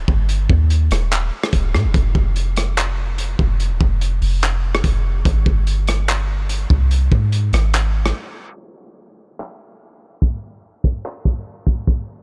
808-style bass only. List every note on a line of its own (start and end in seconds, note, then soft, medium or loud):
0.08 0.48 G1 loud
0.50 0.89 D#2 loud
0.91 1.31 D#1 loud
1.53 1.75 D#1 loud
1.74 1.85 A#2 loud
1.84 1.94 D#1 loud
1.94 2.14 F1 loud
2.15 3.35 F1 loud
3.39 3.72 F1 loud
3.70 3.80 D#1 loud
3.81 4.20 F1 loud
4.22 4.81 F1 loud
4.84 5.24 F1 loud
5.25 5.45 G#1 loud
5.46 6.66 G1 loud
6.70 7.10 C2 loud
7.12 7.51 G#2 loud
7.53 8.12 G#1 loud